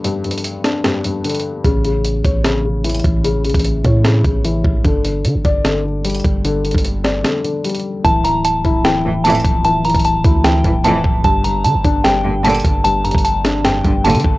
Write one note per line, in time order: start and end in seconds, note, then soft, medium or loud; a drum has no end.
0.00 0.04 G2 medium
0.00 0.65 D3 medium
0.00 0.64 D4 medium
0.04 0.23 G2 loud
0.04 closed hi-hat medium
0.25 0.83 G2 medium
0.25 closed hi-hat soft
0.31 closed hi-hat medium
0.38 closed hi-hat medium
0.45 closed hi-hat medium
0.64 1.65 D4 medium
0.64 snare medium
0.64 closed hi-hat medium
0.85 1.03 G2 medium
0.85 snare loud
0.85 closed hi-hat medium
1.05 1.65 G2 medium
1.05 closed hi-hat medium
1.25 1.65 D3 medium
1.25 closed hi-hat medium
1.30 closed hi-hat medium
1.35 closed hi-hat medium
1.40 closed hi-hat soft
1.65 2.22 A1 loud
1.65 1.83 C#3 loud
1.65 kick loud
1.65 closed hi-hat medium
1.85 2.43 C#3 medium
1.85 closed hi-hat medium
2.05 closed hi-hat medium
2.24 3.01 A1 loud
2.24 3.25 C#5 medium
2.24 kick loud
2.24 closed hi-hat medium
2.44 2.63 C#3 medium
2.44 snare loud
2.44 closed hi-hat medium
2.65 3.23 C#3 medium
2.84 3.85 E3 medium
2.84 closed hi-hat medium
2.90 closed hi-hat medium
2.95 closed hi-hat medium
3.00 closed hi-hat soft
3.04 3.53 A1 loud
3.04 kick loud
3.04 closed hi-hat medium
3.24 3.43 C#3 loud
3.24 closed hi-hat medium
3.44 4.03 C#3 medium
3.44 closed hi-hat soft
3.50 closed hi-hat medium
3.54 3.83 A1 loud
3.54 kick medium
3.54 closed hi-hat medium
3.60 closed hi-hat medium
3.64 closed hi-hat medium
3.85 4.23 A2 loud
3.85 4.85 C#5 medium
3.85 kick loud
3.85 closed hi-hat medium
4.05 4.23 C#3 medium
4.05 snare loud
4.05 closed hi-hat medium
4.24 4.63 A1 loud
4.24 4.85 C#3 medium
4.24 kick loud
4.24 closed hi-hat medium
4.45 4.85 E3 medium
4.45 closed hi-hat medium
4.64 4.84 A1 loud
4.64 kick loud
4.84 5.26 G1 loud
4.84 5.03 D3 loud
4.84 kick loud
4.84 closed hi-hat medium
5.04 5.63 D3 medium
5.04 closed hi-hat medium
5.25 5.36 D3 loud
5.25 closed hi-hat medium
5.35 5.44 G1 loud
5.45 6.21 G1 loud
5.45 6.45 D5 medium
5.45 kick loud
5.45 closed hi-hat medium
5.64 5.83 D3 loud
5.64 snare loud
5.64 closed hi-hat medium
5.85 6.43 D3 medium
6.05 7.05 G3 medium
6.05 closed hi-hat medium
6.10 closed hi-hat medium
6.15 closed hi-hat medium
6.20 closed hi-hat soft
6.24 6.73 G1 loud
6.24 kick loud
6.24 closed hi-hat medium
6.45 6.63 D3 loud
6.45 closed hi-hat medium
6.64 7.23 D3 medium
6.64 closed hi-hat soft
6.71 7.23 G1 loud
6.71 kick medium
6.71 closed hi-hat medium
6.78 closed hi-hat medium
6.85 closed hi-hat medium
7.04 8.04 D5 medium
7.04 snare medium
7.04 closed hi-hat medium
7.24 7.43 D3 medium
7.24 snare loud
7.24 closed hi-hat medium
7.44 8.04 D3 medium
7.44 closed hi-hat medium
7.64 8.04 G3 medium
7.64 closed hi-hat medium
7.69 closed hi-hat medium
7.75 closed hi-hat medium
7.80 closed hi-hat soft
8.04 8.62 D1 loud
8.04 8.23 E3 loud
8.04 8.23 A5 loud
8.04 kick loud
8.04 closed hi-hat medium
8.24 8.83 E3 medium
8.24 8.43 A#5 medium
8.24 closed hi-hat medium
8.45 8.82 A5 medium
8.45 closed hi-hat medium
8.65 9.41 D1 loud
8.65 9.65 E4 loud
8.65 kick loud
8.65 closed hi-hat medium
8.84 9.03 E3 medium
8.84 9.22 G5 medium
8.84 snare loud
8.84 closed hi-hat medium
9.05 9.13 F2 medium
9.05 9.13 A2 medium
9.05 9.13 E3 medium
9.05 9.63 E3 medium
9.24 9.53 F2 loud
9.24 9.53 A2 loud
9.24 9.53 E3 loud
9.24 10.25 F3 medium
9.24 9.62 A5 loud
9.24 closed hi-hat medium
9.30 closed hi-hat medium
9.35 closed hi-hat medium
9.40 closed hi-hat soft
9.44 9.93 D1 loud
9.44 kick loud
9.44 closed hi-hat medium
9.65 9.83 E3 loud
9.65 9.83 A5 loud
9.65 closed hi-hat medium
9.84 10.43 E3 medium
9.84 10.03 A#5 medium
9.84 closed hi-hat soft
9.90 closed hi-hat medium
9.95 10.23 D1 loud
9.95 kick medium
9.95 closed hi-hat medium
9.99 closed hi-hat medium
10.05 10.42 A5 medium
10.05 closed hi-hat medium
10.24 10.63 D2 loud
10.24 11.25 E4 medium
10.24 kick loud
10.24 closed hi-hat medium
10.44 10.63 E3 medium
10.44 10.82 G5 medium
10.44 snare loud
10.44 closed hi-hat medium
10.64 11.03 D1 loud
10.64 10.73 F2 medium
10.64 10.73 A2 medium
10.64 10.73 E3 medium
10.64 11.25 E3 medium
10.64 kick loud
10.64 closed hi-hat medium
10.84 11.13 F2 loud
10.84 11.13 A2 loud
10.84 11.13 E3 loud
10.84 11.25 F3 medium
10.84 11.22 A5 medium
10.84 closed hi-hat medium
11.04 11.24 D1 loud
11.04 kick loud
11.24 11.66 G1 loud
11.24 11.43 G2 loud
11.24 11.43 A5 loud
11.24 kick loud
11.24 closed hi-hat medium
11.44 12.03 G2 medium
11.44 11.63 A#5 medium
11.44 closed hi-hat medium
11.64 11.76 D3 loud
11.64 12.02 A5 medium
11.64 closed hi-hat medium
11.74 11.84 G1 loud
11.85 12.61 G1 loud
11.85 12.85 D4 loud
11.85 kick loud
11.85 closed hi-hat medium
12.04 12.23 G2 medium
12.04 12.42 G5 medium
12.04 snare loud
12.04 closed hi-hat medium
12.25 12.83 G2 medium
12.25 12.33 G2 medium
12.25 12.33 A#2 medium
12.25 12.33 D3 loud
12.44 12.73 G2 loud
12.44 12.73 A#2 medium
12.44 12.73 D3 loud
12.44 13.45 D3 medium
12.44 12.82 A5 medium
12.44 closed hi-hat medium
12.50 closed hi-hat medium
12.55 closed hi-hat medium
12.60 closed hi-hat soft
12.64 13.12 G1 loud
12.64 kick loud
12.64 closed hi-hat medium
12.84 13.03 G2 loud
12.84 13.03 A5 loud
12.84 closed hi-hat medium
13.04 13.63 G2 medium
13.04 13.23 A#5 medium
13.04 closed hi-hat soft
13.11 13.82 G1 loud
13.11 kick medium
13.11 closed hi-hat medium
13.18 closed hi-hat medium
13.24 13.62 A5 medium
13.24 closed hi-hat medium
13.44 14.38 D4 medium
13.44 snare medium
13.44 closed hi-hat medium
13.65 13.83 G2 medium
13.65 14.02 G5 medium
13.65 snare loud
13.65 closed hi-hat medium
13.85 14.16 G1 loud
13.85 13.93 G2 medium
13.85 14.38 G2 medium
13.85 13.93 A#2 medium
13.85 13.93 D3 medium
13.85 kick loud
13.85 closed hi-hat medium
14.04 14.33 G2 loud
14.04 14.33 A#2 loud
14.04 14.33 D3 loud
14.04 14.38 D3 medium
14.04 14.38 A5 medium
14.04 closed hi-hat medium
14.10 closed hi-hat medium
14.15 14.24 D3 loud
14.15 closed hi-hat medium
14.20 closed hi-hat soft
14.25 14.38 G1 loud
14.25 kick loud